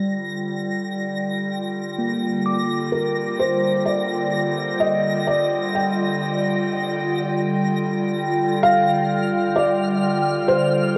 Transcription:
Already playing: D3 G3 F4 G5 A#6
1.99 A#3
2.46 D6
2.92 A#4
3.39 C5
3.86 D5
4.80 D#5
5.27 D5
5.75 G5
8.61 F5 F6
9.56 D5
10.48 C5

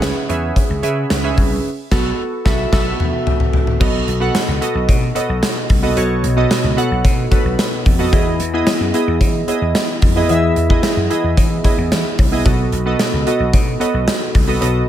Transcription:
Already playing: C#3 C#4 G#4 B4 E5 F#5
0.02 snare, closed hi-hat, cowbell
0.29 E2 C#4 G#4 B4 E5, closed hi-hat
0.56 kick, closed hi-hat, cowbell
0.70 C#2
0.83 C#3 C#4 G#4 B4 E5, closed hi-hat
1.10 C#2, snare, closed hi-hat, cowbell
1.24 C#4 G#4 B4 E5
1.37 C2, kick, open hi-hat
1.91 B1 B3 F#4 A4, kick, snare, crash
2.45 B1 B3 F#4 A4 E5, kick, snare
2.72 B1 B3 F#4 A4 E5, kick, snare, crash
3.00 mid tom
3.27 floor tom
3.40 floor tom
3.53 floor tom
3.67 floor tom
3.80 B1 B2 B3 F#4 A4 D#5, kick, crash, cowbell
4.08 B1, closed hi-hat
4.20 B3 F#4 A4 F#5
4.35 snare, closed hi-hat, tambourine, cowbell
4.48 C#2
4.61 B3 F#4 A4 D#5, closed hi-hat
4.75 B1
4.89 B2, kick, closed hi-hat, cowbell
5.15 B3 F#4 A4 D#5, closed hi-hat, cowbell
5.29 B1
5.43 snare, closed hi-hat, tambourine, cowbell
5.69 C2, kick, open hi-hat
5.83 B3 F#4 A4 D#5
5.96 B1 B2 B3 F#4 A4 C#5, closed hi-hat, cowbell
6.23 B1, closed hi-hat
6.37 B3 F#4 A4 D#5
6.51 snare, closed hi-hat, tambourine, cowbell
6.64 C#2
6.77 B3 F#4 A4 F#5, closed hi-hat
6.91 B1
7.04 B2, kick, closed hi-hat, cowbell
7.31 B3 F#4 A4 B4, kick, closed hi-hat, cowbell
7.45 B1
7.59 snare, closed hi-hat, tambourine, cowbell
7.86 F2, kick, open hi-hat
7.99 B3 F#4 A4 D#5
8.12 E2 E3 B3 E4 G#4 D#5, kick, closed hi-hat, cowbell
8.40 E2, closed hi-hat
8.54 B3 E4 G#4 D#5
8.67 snare, closed hi-hat, tambourine, cowbell
8.80 F#2
8.94 B3 E4 G#4 D#5, closed hi-hat
9.07 E2
9.21 E3, kick, closed hi-hat, cowbell
9.48 B3 E4 G#4 D#5, closed hi-hat, cowbell
9.61 E2
9.75 snare, closed hi-hat, tambourine, cowbell
10.02 F2, kick, open hi-hat
10.16 B3 E4 G#4 D#5
10.29 E2 E3 B3 E4 G#4 E5, closed hi-hat, cowbell
10.56 E2, closed hi-hat
10.70 B3 E4 G#4 D#5, kick
10.83 snare, closed hi-hat, tambourine, cowbell
10.96 F#2
11.10 B3 E4 G#4 D#5, closed hi-hat
11.24 E2
11.37 E3, kick, closed hi-hat, cowbell
11.64 B3 E4 G#4 D#5, kick, closed hi-hat, cowbell
11.78 E2
11.92 E2, snare, closed hi-hat, tambourine, cowbell
12.19 C2, kick, open hi-hat, cowbell
12.32 B3 E4 G#4 D#5
12.45 B1 B2 B3 F#4 A4 D#5, kick, closed hi-hat, cowbell
12.72 B1, closed hi-hat
12.86 B3 F#4 A4 D#5
12.99 snare, closed hi-hat, tambourine, cowbell
13.13 C#2
13.26 B3 F#4 A4 D#5, closed hi-hat
13.40 B1
13.53 B2, kick, closed hi-hat, cowbell
13.80 B3 F#4 A4 D#5, closed hi-hat, cowbell
13.94 B1
14.08 snare, closed hi-hat, tambourine, cowbell
14.35 C2, kick, open hi-hat
14.47 B3 F#4 A4 D#5
14.61 B1 B2 B3 F#4 A4 D#5, closed hi-hat, cowbell

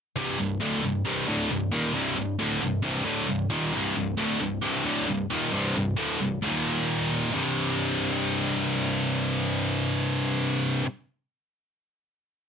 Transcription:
0.16 C2 G2 C3
0.39 C2 G2
0.60 D2 A2 D3
0.83 C2 G2
1.05 C2 G2 C3
1.27 D2 A2 D3
1.51 C2 G2
1.72 D#2 A#2 D#3
1.94 C2 G2 C3
2.16 C2 G2
2.39 D2 A2 D3
2.61 C2 G2
2.83 C2 G2 C3
3.05 D2 A2 D3
3.28 C2 G2
3.50 D#2 A#2 D#3
3.73 C2 G2 C3
3.96 C2 G2
4.18 D2 A2 D3
4.40 C2 G2
4.62 C2 G2 C3
4.85 D2 A2 D3
5.08 C2 G2
5.30 D#2 A#2 D#3
5.52 C2 G2 C3
5.75 C2 G2
5.97 D2 A2 D3
6.21 C2 G2
6.42 D#2 A#2 D#3
7.32 C2 G2
7.36 C3

